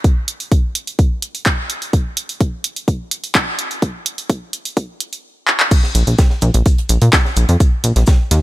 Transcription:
0.04 kick loud
0.04 closed hi-hat medium
0.28 closed hi-hat loud
0.40 closed hi-hat medium
0.52 kick loud
0.52 closed hi-hat medium
0.75 closed hi-hat loud
0.87 closed hi-hat medium
0.99 kick loud
0.99 closed hi-hat medium
1.22 closed hi-hat loud
1.35 closed hi-hat medium
1.46 kick loud
1.46 clap loud
1.46 closed hi-hat medium
1.70 closed hi-hat medium
1.82 closed hi-hat medium
1.93 kick loud
1.93 closed hi-hat medium
2.17 closed hi-hat loud
2.29 closed hi-hat medium
2.41 kick loud
2.41 closed hi-hat medium
2.64 closed hi-hat loud
2.76 closed hi-hat medium
2.88 kick loud
2.88 closed hi-hat medium
3.11 closed hi-hat loud
3.24 closed hi-hat medium
3.35 kick loud
3.35 clap loud
3.35 closed hi-hat medium
3.59 closed hi-hat medium
3.71 closed hi-hat medium
3.82 kick loud
3.82 closed hi-hat medium
4.06 closed hi-hat loud
4.18 closed hi-hat medium
4.30 kick loud
4.30 closed hi-hat medium
4.53 closed hi-hat loud
4.65 closed hi-hat medium
4.77 kick loud
4.77 closed hi-hat medium
5.00 closed hi-hat loud
5.13 closed hi-hat medium
5.48 clap medium
5.60 clap loud
5.71 kick loud
5.71 closed hi-hat medium
5.71 crash loud
5.71 shaker medium
5.83 snare soft
5.95 6.03 A#1 medium
5.95 closed hi-hat loud
5.95 shaker medium
6.07 6.15 A#1 medium
6.07 closed hi-hat medium
6.18 kick loud
6.18 snare loud
6.18 closed hi-hat medium
6.18 shaker medium
6.30 snare soft
6.42 6.51 A#1 loud
6.42 closed hi-hat medium
6.42 shaker medium
6.54 6.62 A#1 medium
6.54 closed hi-hat soft
6.54 closed hi-hat medium
6.66 kick loud
6.66 closed hi-hat medium
6.66 shaker medium
6.78 closed hi-hat soft
6.89 6.98 A#1 medium
6.89 closed hi-hat loud
6.89 shaker medium
7.02 7.10 A#2 medium
7.02 closed hi-hat medium
7.13 kick loud
7.13 snare loud
7.13 clap loud
7.13 closed hi-hat medium
7.13 shaker medium
7.25 snare medium
7.36 7.45 A#1 loud
7.36 closed hi-hat medium
7.36 shaker medium
7.49 7.57 F2 medium
7.49 closed hi-hat medium
7.60 kick loud
7.60 closed hi-hat medium
7.60 shaker medium
7.84 7.92 A#1 loud
7.84 closed hi-hat loud
7.84 shaker medium
7.96 8.04 A#1 medium
7.96 snare soft
7.96 closed hi-hat medium
8.07 kick loud
8.07 snare loud
8.07 closed hi-hat medium
8.07 shaker medium
8.31 8.40 D#2 loud
8.31 snare soft
8.31 closed hi-hat loud
8.31 shaker medium

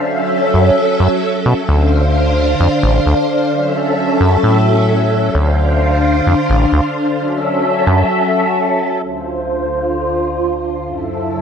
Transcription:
0.00 1.67 F#3 medium
0.00 1.67 C#4 medium
0.00 1.67 A4 medium
0.00 1.67 E5 medium
0.54 0.71 F#2 medium
1.00 1.08 F#2 loud
1.46 1.54 B2 loud
1.69 2.55 D2 medium
1.69 3.50 D3 medium
1.69 3.50 D4 medium
1.69 3.50 C5 medium
1.69 3.50 F5 medium
2.60 2.69 F2 medium
2.83 3.00 A1 loud
3.06 3.14 D2 medium
3.52 5.33 F#3 medium
3.52 5.33 C#4 medium
3.52 5.33 A4 medium
3.52 5.33 E5 medium
4.21 4.37 F#2 medium
4.43 5.30 A2 loud
5.35 6.22 D2 loud
5.35 7.16 D3 medium
5.35 7.16 D4 medium
5.35 7.16 C5 medium
5.35 7.16 F5 medium
6.27 6.35 F2 medium
6.49 6.66 A1 loud
6.72 6.81 D2 medium
7.18 9.00 F#3 medium
7.18 9.00 C#4 medium
7.18 9.00 A4 medium
7.18 9.00 E5 medium
7.87 8.04 F#2 medium
9.02 10.83 D2 medium
9.02 10.83 D3 medium
9.02 10.83 F4 medium
9.02 10.83 C5 medium
10.85 11.42 F#2 medium
10.85 11.42 C#3 medium
10.85 11.42 E4 medium
10.85 11.42 A4 medium

